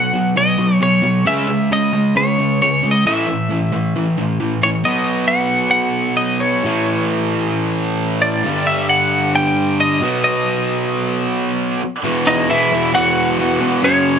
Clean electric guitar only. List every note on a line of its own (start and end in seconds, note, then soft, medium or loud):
0.00 0.34 F#5 medium
0.37 0.82 D#5 medium
0.83 1.27 C#5 medium
1.27 1.72 E5 medium
1.73 2.17 D#5 medium
2.17 2.61 C#5 medium
2.62 2.91 C#5 medium
2.91 3.06 D#5 medium
3.07 4.37 E5 medium
4.63 4.69 C#5 medium
4.85 5.27 D#5 medium
5.28 5.70 F#5 loud
5.71 6.16 F#5 medium
6.17 6.42 D#5 medium
6.40 7.05 C#5 medium
8.22 8.68 D5 medium
8.67 8.89 E5 medium
8.90 9.35 F#5 medium
9.36 9.80 G5 medium
9.80 10.23 D#5 medium
10.24 11.55 D#5 medium
12.27 12.48 D#4 medium
12.27 12.50 D#5 medium
12.50 12.91 E4 medium
12.50 12.96 E5 medium
12.95 13.80 F#4 medium
12.95 13.87 F#5 medium
13.84 14.19 C#4 medium
13.84 14.19 C#5 medium